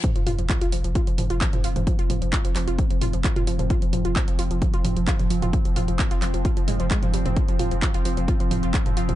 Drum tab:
HH |xxoxxxoxxxoxxxox|xxoxxxoxxxoxxxox|xxoxxxoxxxoxxxox|xxoxxxoxxxoxxxox|
CP |----x-------x---|----x-x-----x---|----x-------x---|----x-x-----x---|
T2 |--o-------o--o-o|--o-------o--o-o|--o-------o--o-o|--o-------o--o-o|
BD |o---o---o---o---|o---o---o---o---|o---o---o---o---|o---o---o---o---|

HH |xxoxxxoxxxoxxxox|
CP |----x-------x---|
T2 |--o-------o--o-o|
BD |o---o---o---o---|